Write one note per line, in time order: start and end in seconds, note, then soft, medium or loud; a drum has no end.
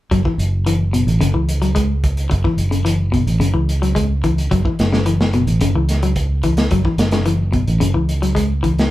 0.11 0.25 F#1 medium
0.11 0.20 F#3 medium
0.11 kick medium
0.11 closed hi-hat medium
0.25 0.42 E3 medium
0.25 kick medium
0.38 1.04 F#1 medium
0.38 closed hi-hat soft
0.66 0.83 E3 medium
0.66 closed hi-hat medium
0.93 1.10 B2 medium
0.93 closed hi-hat soft
1.07 1.20 A1 medium
1.07 closed hi-hat soft
1.21 1.34 F#1 medium
1.21 1.29 C#3 medium
1.21 closed hi-hat medium
1.34 2.27 C#2 medium
1.34 1.51 E3 soft
1.49 closed hi-hat medium
1.62 1.70 F#3 medium
1.62 closed hi-hat soft
1.75 1.92 G#3 medium
1.75 kick medium
1.75 closed hi-hat medium
2.04 kick medium
2.04 closed hi-hat soft
2.17 closed hi-hat soft
2.30 2.44 F#1 medium
2.30 muted clean electric guitar stroke medium
2.30 kick medium
2.30 closed hi-hat medium
2.44 2.61 E3 medium
2.44 kick medium
2.57 3.23 F#1 medium
2.57 closed hi-hat soft
2.71 2.80 C#3 medium
2.71 closed hi-hat soft
2.85 3.02 E3 medium
2.85 closed hi-hat medium
3.12 3.29 B2 medium
3.12 kick soft
3.12 closed hi-hat soft
3.27 3.39 A1 medium
3.27 closed hi-hat soft
3.40 3.54 F#1 medium
3.40 3.49 C#3 medium
3.40 closed hi-hat medium
3.54 4.47 C#2 medium
3.54 3.71 E3 medium
3.69 closed hi-hat soft
3.82 3.91 F#3 medium
3.82 closed hi-hat soft
3.95 4.12 G#3 medium
3.95 kick medium
3.95 closed hi-hat medium
4.24 4.41 E3 medium
4.24 kick medium
4.24 closed hi-hat soft
4.38 closed hi-hat soft
4.51 4.65 F#1 medium
4.51 4.60 F#3 medium
4.51 kick medium
4.51 closed hi-hat medium
4.65 4.82 E3 medium
4.65 kick medium
4.79 5.44 F#1 medium
4.79 snare medium
4.79 closed hi-hat soft
4.93 5.01 C#3 medium
4.93 snare medium
5.06 5.23 E3 medium
5.06 closed hi-hat medium
5.21 snare medium
5.33 5.51 B2 medium
5.33 closed hi-hat soft
5.47 5.60 A1 medium
5.47 closed hi-hat soft
5.60 5.74 F#1 medium
5.60 5.70 C#3 medium
5.60 closed hi-hat medium
5.75 6.67 C#2 medium
5.75 5.92 E3 medium
5.89 snare soft
5.89 closed hi-hat medium
6.03 6.11 F#3 medium
6.03 closed hi-hat soft
6.16 kick medium
6.16 closed hi-hat medium
6.43 6.61 E3 medium
6.43 kick medium
6.43 closed hi-hat soft
6.57 snare medium
6.57 closed hi-hat soft
6.71 6.84 F#1 medium
6.71 6.80 F#3 medium
6.71 kick medium
6.71 closed hi-hat medium
6.85 7.02 E3 medium
6.85 kick medium
6.98 7.63 F#1 medium
6.98 snare medium
6.98 closed hi-hat medium
7.11 7.21 C#3 medium
7.11 snare medium
7.11 closed hi-hat soft
7.25 7.43 E3 medium
7.25 closed hi-hat medium
7.52 7.70 B2 medium
7.52 kick medium
7.52 closed hi-hat soft
7.68 7.81 A1 medium
7.68 closed hi-hat soft
7.80 7.94 F#1 medium
7.80 7.89 C#3 medium
7.80 closed hi-hat medium
7.94 8.88 C#2 medium
7.94 8.11 E3 medium
8.09 closed hi-hat soft
8.22 8.31 F#3 medium
8.22 closed hi-hat soft
8.35 8.52 G#3 medium
8.35 kick medium
8.35 closed hi-hat medium
8.63 8.80 E3 medium
8.63 kick medium
8.63 closed hi-hat soft
8.79 snare medium
8.79 closed hi-hat soft